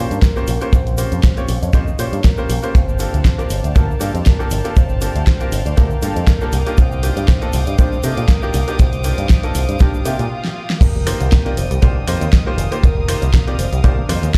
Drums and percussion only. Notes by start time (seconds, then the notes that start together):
0.11 closed hi-hat, shaker
0.22 kick, snare, closed hi-hat, shaker
0.36 shaker
0.47 open hi-hat, shaker
0.61 closed hi-hat, shaker
0.73 kick, closed hi-hat, shaker
0.87 closed hi-hat, shaker
0.98 open hi-hat, shaker
1.12 closed hi-hat, shaker
1.23 kick, snare, closed hi-hat, shaker
1.37 closed hi-hat, shaker
1.48 open hi-hat, shaker
1.63 closed hi-hat, shaker
1.73 kick, snare, closed hi-hat, shaker
1.87 shaker
1.99 open hi-hat, shaker
2.13 closed hi-hat, shaker
2.24 kick, snare, closed hi-hat, shaker
2.37 shaker
2.50 open hi-hat, shaker
2.63 closed hi-hat, shaker
2.75 kick, closed hi-hat, shaker
2.89 shaker
2.99 open hi-hat, shaker
3.14 closed hi-hat, shaker
3.25 kick, snare, closed hi-hat, shaker
3.39 closed hi-hat, shaker
3.50 open hi-hat, shaker
3.64 closed hi-hat, shaker
3.76 kick, closed hi-hat, shaker
3.91 shaker
4.01 open hi-hat, shaker
4.15 closed hi-hat, shaker
4.25 kick, snare, closed hi-hat, shaker
4.40 shaker
4.51 open hi-hat, shaker
4.64 closed hi-hat, shaker
4.76 kick, closed hi-hat, shaker
4.89 shaker
5.01 open hi-hat, shaker
5.15 closed hi-hat, shaker
5.26 kick, snare, closed hi-hat, shaker
5.40 closed hi-hat, shaker
5.52 open hi-hat, shaker
5.66 closed hi-hat, shaker
5.77 kick, snare, closed hi-hat, shaker
5.90 shaker
6.02 open hi-hat, shaker
6.16 closed hi-hat, shaker
6.27 kick, snare, closed hi-hat, shaker
6.41 shaker
6.52 open hi-hat, shaker
6.67 closed hi-hat, shaker
6.77 kick, closed hi-hat, shaker
6.92 shaker
7.03 open hi-hat, shaker
7.17 closed hi-hat, shaker
7.28 kick, snare, closed hi-hat, shaker
7.42 closed hi-hat, shaker
7.53 open hi-hat, shaker
7.67 closed hi-hat, shaker
7.78 kick, closed hi-hat, shaker
7.92 shaker
8.03 open hi-hat, shaker
8.17 closed hi-hat, shaker
8.28 kick, snare, closed hi-hat, shaker
8.42 shaker
8.54 open hi-hat, shaker
8.68 closed hi-hat, shaker
8.79 kick, closed hi-hat, shaker
8.93 closed hi-hat, shaker
9.04 open hi-hat, shaker
9.18 closed hi-hat, shaker
9.29 kick, snare, closed hi-hat, shaker
9.43 closed hi-hat, shaker
9.55 open hi-hat, shaker
9.69 closed hi-hat, shaker
9.79 kick, snare, closed hi-hat, shaker
9.94 shaker
10.05 open hi-hat, shaker
10.19 closed hi-hat, shaker
10.45 snare
10.70 snare
10.81 kick, closed hi-hat, crash, shaker
11.07 finger snap, open hi-hat, shaker
11.20 closed hi-hat, shaker
11.32 kick, snare, closed hi-hat, shaker
11.46 closed hi-hat
11.57 open hi-hat, shaker
11.71 closed hi-hat, shaker
11.82 kick, closed hi-hat, shaker
12.08 finger snap, open hi-hat, shaker
12.21 closed hi-hat, shaker
12.33 kick, snare, closed hi-hat, shaker
12.58 open hi-hat, shaker
12.72 closed hi-hat, shaker
12.83 kick, closed hi-hat, shaker
13.09 finger snap, open hi-hat, shaker
13.22 closed hi-hat, shaker
13.34 kick, snare, closed hi-hat, shaker
13.48 closed hi-hat
13.59 open hi-hat, shaker
13.73 closed hi-hat, shaker
13.84 kick, closed hi-hat, shaker
14.09 finger snap, open hi-hat, shaker
14.23 closed hi-hat, shaker
14.34 kick, snare, closed hi-hat